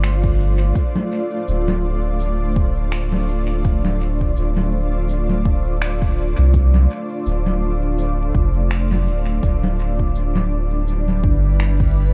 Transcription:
0.00 0.73 G1 medium
0.00 9.43 A3 medium
0.00 12.13 D4 medium
0.00 9.43 F4 medium
0.00 9.43 C5 medium
0.00 12.13 D5 medium
0.00 finger snap medium
0.00 cabasa soft
0.24 kick loud
0.40 cabasa soft
0.75 kick loud
0.75 cabasa medium
0.96 low conga medium
1.11 cabasa soft
1.48 4.34 D1 medium
1.48 cabasa medium
1.68 low conga medium
2.20 cabasa soft
2.56 kick loud
2.92 finger snap medium
2.92 cabasa medium
3.12 low conga medium
3.28 cabasa soft
3.64 kick loud
3.64 cabasa medium
3.85 low conga medium
4.01 cabasa soft
4.21 kick medium
4.37 6.34 D1 medium
4.37 cabasa medium
4.57 low conga medium
5.09 cabasa soft
5.29 low conga medium
5.45 kick loud
5.82 finger snap medium
5.82 cabasa soft
6.02 kick loud
6.18 cabasa soft
6.38 6.87 C2 loud
6.54 kick loud
6.54 cabasa soft
6.74 low conga medium
6.90 cabasa soft
7.26 8.32 D1 medium
7.26 cabasa soft
7.46 low conga medium
7.98 cabasa soft
8.35 9.09 F1 medium
8.35 kick loud
8.71 finger snap medium
8.71 cabasa soft
8.91 low conga medium
9.07 9.39 D1 loud
9.07 cabasa soft
9.43 11.25 D1 medium
9.43 12.13 G3 medium
9.43 kick loud
9.43 cabasa soft
9.63 low conga medium
9.79 cabasa soft
9.99 kick medium
10.09 12.13 E4 medium
10.14 12.13 B4 medium
10.14 cabasa soft
10.36 low conga medium
10.88 cabasa soft
11.08 low conga medium
11.23 12.13 G1 medium
11.23 kick loud
11.60 finger snap medium
11.60 cabasa soft
11.80 kick loud
11.96 cabasa soft

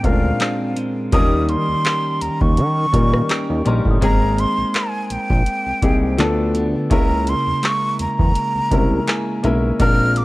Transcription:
0.00 1.12 A#2 medium
0.00 0.03 G#3 loud
0.00 0.39 G#3 medium
0.00 0.97 G#3 medium
0.00 0.04 C4 medium
0.00 0.40 C4 medium
0.00 0.97 C4 medium
0.00 0.11 D4 medium
0.00 0.40 D4 medium
0.00 0.05 F4 medium
0.00 0.05 A#4 loud
0.00 0.72 G5 medium
0.00 kick medium
0.00 closed hi-hat medium
0.04 0.33 D2 loud
0.04 0.11 C#4 medium
0.04 0.98 F4 medium
0.04 0.98 A#4 medium
0.04 0.77 F5 medium
0.11 1.01 D4 medium
0.40 0.75 G#3 medium
0.40 1.21 C4 medium
0.40 1.21 D4 medium
0.40 clap loud
0.40 closed hi-hat medium
0.76 1.20 G#3 medium
0.76 closed hi-hat medium
1.12 1.57 D#2 loud
1.12 4.62 D#3 medium
1.12 1.19 F3 medium
1.12 2.37 A#3 medium
1.12 2.37 C#4 medium
1.12 2.37 D#4 medium
1.12 2.37 A#4 loud
1.12 1.51 D#6 loud
1.12 kick loud
1.12 closed hi-hat medium
1.19 2.40 G3 loud
1.49 2.23 C6 loud
1.49 closed hi-hat medium
1.69 1.75 D#2 medium
1.85 3.28 C#4 medium
1.85 3.30 G4 medium
1.85 3.30 A#4 medium
1.85 clap loud
1.85 closed hi-hat medium
2.21 2.29 D#2 soft
2.21 2.43 A#5 medium
2.21 closed hi-hat medium
2.41 2.59 D#2 medium
2.41 3.66 C#6 loud
2.41 kick medium
2.57 2.86 D#3 loud
2.57 closed hi-hat medium
2.92 3.22 A#2 loud
2.92 3.55 G3 medium
2.92 3.55 A#3 medium
2.92 3.56 C#4 medium
2.92 3.56 D#4 medium
2.92 3.56 A#4 medium
2.92 kick medium
2.92 closed hi-hat medium
3.13 cross-stick loud
3.29 3.65 C#4 medium
3.29 6.80 G4 medium
3.29 4.75 A#4 medium
3.29 clap loud
3.29 closed hi-hat medium
3.50 3.63 D#2 medium
3.65 3.81 A#1 loud
3.65 3.96 G3 medium
3.65 3.97 A#3 medium
3.65 4.10 C#4 medium
3.65 3.97 C#4 medium
3.65 3.97 D#4 medium
3.65 3.98 A#4 medium
3.65 4.34 C6 medium
3.65 closed hi-hat medium
3.85 3.98 A1 medium
3.85 kick loud
3.90 4.56 D#6 medium
4.01 4.46 G#1 loud
4.01 5.26 G#3 medium
4.01 6.27 G#3 medium
4.01 5.26 A#3 medium
4.01 5.26 C4 medium
4.01 5.26 D#4 medium
4.01 5.26 G#4 loud
4.01 4.41 A#5 loud
4.01 kick loud
4.01 closed hi-hat medium
4.12 4.75 F6 medium
4.38 4.78 C6 loud
4.38 closed hi-hat medium
4.58 4.64 A#1 medium
4.74 6.27 C4 medium
4.74 6.27 A#4 medium
4.74 5.14 G#5 loud
4.74 clap loud
4.74 closed hi-hat medium
5.10 5.18 A#1 soft
5.10 6.56 G5 loud
5.10 closed hi-hat medium
5.30 5.43 A#1 loud
5.30 kick medium
5.46 closed hi-hat medium
5.67 5.73 C2 soft
5.82 6.20 C2 loud
5.82 6.18 A#3 medium
5.82 6.19 C4 medium
5.82 6.19 D#4 medium
5.82 6.18 G4 medium
5.82 6.19 G#4 medium
5.82 kick medium
5.82 closed hi-hat medium
6.18 6.76 D2 loud
6.18 6.90 D3 medium
6.18 6.80 F3 medium
6.18 6.81 A3 medium
6.18 6.81 B3 medium
6.18 6.81 D4 medium
6.18 6.81 A4 loud
6.18 clap loud
6.18 closed hi-hat medium
6.55 6.99 B3 medium
6.55 closed hi-hat medium
6.90 7.35 C#2 loud
6.90 8.14 G#3 loud
6.90 8.15 A#3 medium
6.90 8.15 C#4 medium
6.90 8.15 E4 medium
6.90 8.16 A#4 loud
6.90 7.30 A#5 loud
6.90 kick loud
6.90 closed hi-hat medium
7.27 7.67 C6 loud
7.27 closed hi-hat medium
7.47 7.53 E2 medium
7.63 9.07 G#3 medium
7.63 9.08 A#3 medium
7.63 9.07 E4 medium
7.63 8.00 C#6 loud
7.63 clap loud
7.63 closed hi-hat medium
7.99 8.07 E2 soft
7.99 9.41 A#5 loud
7.99 closed hi-hat medium
8.19 8.32 E2 medium
8.19 kick medium
8.35 closed hi-hat medium
8.55 8.61 C2 soft
8.71 9.00 C2 loud
8.71 9.34 G#3 medium
8.71 9.34 A#3 medium
8.71 9.34 C#4 medium
8.71 9.34 E4 medium
8.71 9.34 A#4 medium
8.71 kick medium
8.71 closed hi-hat medium
9.07 9.43 G#3 medium
9.07 10.25 A#3 medium
9.07 9.88 E4 medium
9.07 9.41 G#5 medium
9.07 clap loud
9.07 closed hi-hat medium
9.43 9.73 B1 loud
9.43 9.75 G#3 medium
9.43 10.25 G#3 medium
9.43 9.75 A#3 medium
9.43 9.75 C#4 medium
9.43 9.75 E4 medium
9.43 9.76 A#4 medium
9.43 9.78 E5 medium
9.43 closed hi-hat medium
9.80 10.24 A#1 loud
9.80 10.25 A#2 medium
9.80 10.25 G#3 loud
9.80 10.25 C4 medium
9.80 10.25 D4 medium
9.80 10.25 F4 medium
9.80 10.25 A#4 loud
9.80 10.19 F6 loud
9.80 kick loud
9.80 closed hi-hat medium
10.16 10.25 D6 loud
10.16 closed hi-hat medium

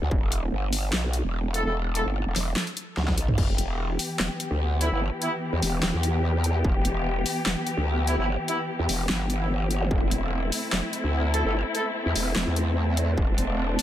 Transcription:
0.02 0.10 D2 loud
0.11 0.51 E1 loud
0.11 kick loud
0.32 closed hi-hat medium
0.52 0.91 G1 loud
0.73 open hi-hat loud
0.93 1.22 B1 loud
0.93 snare loud
0.93 clap medium
1.13 closed hi-hat medium
1.24 1.63 E1 loud
1.54 1.63 A3 medium
1.54 1.63 E4 medium
1.54 1.63 A4 loud
1.54 closed hi-hat medium
1.65 2.04 E1 loud
1.65 1.74 A3 medium
1.65 1.74 E4 medium
1.65 1.74 A4 loud
1.95 2.05 A3 loud
1.95 2.05 E4 medium
1.95 2.05 A4 loud
1.95 closed hi-hat medium
2.06 2.25 G1 loud
2.26 2.34 E1 loud
2.36 2.55 E1 loud
2.36 snare medium
2.36 open hi-hat loud
2.56 snare loud
2.56 clap medium
2.67 closed hi-hat soft
2.77 closed hi-hat medium
2.97 3.16 D2 loud
2.97 snare medium
3.08 kick medium
3.08 snare medium
3.17 3.36 B1 loud
3.17 closed hi-hat medium
3.28 mid tom medium
3.38 3.57 E1 loud
3.38 9.87 E3 medium
3.38 9.87 B3 medium
3.38 9.87 G4 medium
3.38 kick loud
3.38 crash loud
3.58 3.98 E1 loud
3.58 closed hi-hat medium
3.99 open hi-hat medium
4.20 4.29 E1 loud
4.20 snare loud
4.20 clap medium
4.40 closed hi-hat medium
4.51 4.90 D2 loud
4.81 4.90 E3 medium
4.81 4.90 B3 medium
4.81 4.90 E4 loud
4.81 closed hi-hat medium
4.92 5.10 G1 loud
4.92 5.00 E3 medium
4.92 5.00 B3 medium
4.92 5.00 E4 loud
5.22 5.31 E3 loud
5.22 5.31 B3 medium
5.22 5.31 E4 loud
5.22 closed hi-hat medium
5.53 5.61 E2 loud
5.62 5.81 E1 loud
5.62 open hi-hat medium
5.83 5.92 E1 loud
5.83 snare loud
5.83 clap loud
5.94 6.63 E2 loud
6.03 closed hi-hat medium
6.44 closed hi-hat medium
6.65 6.83 E1 loud
6.65 kick loud
6.85 7.24 E1 loud
6.85 closed hi-hat medium
7.26 open hi-hat medium
7.46 7.55 E1 loud
7.46 snare loud
7.46 clap medium
7.67 closed hi-hat medium
7.77 8.16 D2 loud
8.07 8.16 E3 medium
8.07 8.16 B3 medium
8.07 8.16 E4 loud
8.07 closed hi-hat medium
8.18 8.37 G1 loud
8.18 8.27 E3 medium
8.18 8.27 B3 medium
8.18 8.27 E4 loud
8.48 8.58 E3 loud
8.48 8.58 B3 medium
8.48 8.58 E4 loud
8.48 closed hi-hat medium
8.79 8.87 E2 loud
8.89 9.08 E1 loud
8.89 open hi-hat medium
9.09 9.89 G1 loud
9.09 snare loud
9.09 clap medium
9.30 closed hi-hat medium
9.40 9.49 E3 medium
9.40 9.49 B3 medium
9.40 9.49 E4 medium
9.71 closed hi-hat medium
9.81 zap medium
9.91 10.10 E1 loud
9.91 13.82 A3 medium
9.91 13.82 C4 medium
9.91 13.14 E4 medium
9.91 kick loud
10.11 10.51 E1 loud
10.11 closed hi-hat medium
10.52 open hi-hat medium
10.73 10.82 E1 loud
10.73 snare loud
10.73 clap medium
10.93 closed hi-hat medium
11.04 11.43 D2 loud
11.34 11.43 A3 loud
11.34 11.43 E4 medium
11.34 11.43 A4 loud
11.34 closed hi-hat medium
11.45 11.63 G1 loud
11.45 11.53 A3 loud
11.45 11.53 E4 medium
11.45 11.53 A4 loud
11.75 11.85 A3 loud
11.75 11.85 E4 medium
11.75 11.85 A4 loud
11.75 closed hi-hat medium
12.06 12.14 E2 loud
12.15 12.34 E1 loud
12.15 open hi-hat loud
12.36 12.45 E1 loud
12.36 snare loud
12.36 clap medium
12.47 13.16 E2 loud
12.56 closed hi-hat medium
12.97 closed hi-hat medium
13.17 13.36 E1 loud
13.17 13.82 D4 medium
13.17 kick loud
13.38 13.77 E1 loud
13.38 closed hi-hat medium
13.79 open hi-hat loud

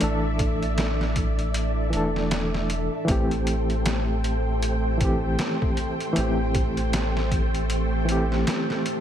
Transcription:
0.00 1.93 A1 loud
0.00 1.90 E3 medium
0.00 1.92 A3 medium
0.00 3.04 A3 medium
0.00 1.95 D4 medium
0.00 0.04 A4 medium
0.00 3.04 A4 medium
0.00 1.91 A4 medium
0.00 3.05 D5 medium
0.00 3.05 E5 medium
0.00 closed hi-hat medium
0.39 kick medium
0.39 closed hi-hat medium
0.63 closed hi-hat soft
0.78 snare loud
0.78 closed hi-hat medium
1.01 snare medium
1.16 kick medium
1.16 closed hi-hat medium
1.39 closed hi-hat soft
1.54 closed hi-hat medium
1.90 2.89 E1 medium
1.90 3.03 E3 medium
1.90 3.04 A3 medium
1.90 closed hi-hat medium
1.95 3.05 D4 medium
1.95 3.07 A4 medium
2.16 snare soft
2.31 snare loud
2.31 closed hi-hat medium
2.54 snare soft
2.70 closed hi-hat medium
3.05 4.95 E3 medium
3.05 4.96 A3 medium
3.05 9.00 A3 medium
3.05 9.00 A4 medium
3.05 9.00 C5 medium
3.05 9.00 G5 medium
3.05 kick loud
3.05 closed hi-hat medium
3.09 5.37 A1 loud
3.09 4.97 C4 medium
3.09 4.99 G4 loud
3.31 closed hi-hat soft
3.47 closed hi-hat medium
3.70 closed hi-hat soft
3.86 snare loud
3.86 closed hi-hat medium
4.24 closed hi-hat medium
4.62 closed hi-hat medium
4.97 6.11 E3 medium
4.97 6.12 A3 medium
4.97 kick loud
4.97 closed hi-hat medium
5.02 6.13 C4 medium
5.02 6.14 G4 medium
5.39 snare loud
5.39 closed hi-hat medium
5.62 kick medium
5.77 closed hi-hat medium
6.00 closed hi-hat soft
6.13 8.03 E3 medium
6.13 8.04 A3 medium
6.13 closed hi-hat medium
6.17 8.45 A1 loud
6.17 8.06 C4 medium
6.17 8.07 G4 medium
6.55 kick medium
6.55 closed hi-hat medium
6.77 closed hi-hat soft
6.93 snare loud
6.93 closed hi-hat medium
7.17 snare medium
7.32 kick medium
7.32 closed hi-hat medium
7.55 closed hi-hat soft
7.70 closed hi-hat medium
8.05 9.00 E3 medium
8.05 9.00 A3 medium
8.05 closed hi-hat medium
8.10 9.00 C4 medium
8.10 9.00 G4 loud
8.32 snare soft
8.47 snare loud
8.47 closed hi-hat medium
8.70 snare medium
8.86 closed hi-hat medium

